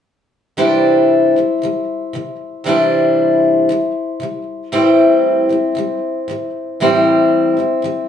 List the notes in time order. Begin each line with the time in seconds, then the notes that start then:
0.57 C3 E3 G3 D4 E4 C5
1.36 C3 E3 G3
1.62 C3 E3 G3
2.13 C3 E3 G3
2.64 C3 E3 G3 D4 E4
2.68 C5
3.69 C3 E3 G3
4.20 C3 E3 G3
4.72 A2 E3 G3 C4 E4 C5
5.49 A2 E3 G3
5.75 A2 E3 G3
6.28 A2 E3 G3
6.80 A2 E3 G3 C4 E4 C5
7.57 A2 E3 G3
7.82 A2 E3 G3